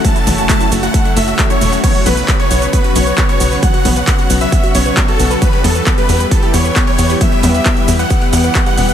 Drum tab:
CC |----------------|x---------------|----------------|----------------|
HH |xxoxxxoxxxoxxxo-|xxoxxxoxxxo-xxo-|xxoxxxoxxxo-xxo-|xxoxxxoxxxoxxxo-|
SH |xxxxxxxxx-xxxxxx|x-xxx-xxx-xxx-xx|x-xxx-xxx-xxx-xx|x-xxx-xxx-xxx-xx|
CP |----x-------x---|----x-------x---|----x-------x---|----x-------x---|
T2 |o-o---------o---|o-o-------------|o-o-------------|o-o-------------|
BD |o-o-o---o---o---|o---o---o---o---|o---o---o---o---|o---o---o---o---|

CC |----------------|
HH |xxoxxxoxxxoxxxox|
SH |x-xxx-xxx-xxx-xx|
CP |----x-------x---|
T2 |o-o-------------|
BD |o---o---o---o---|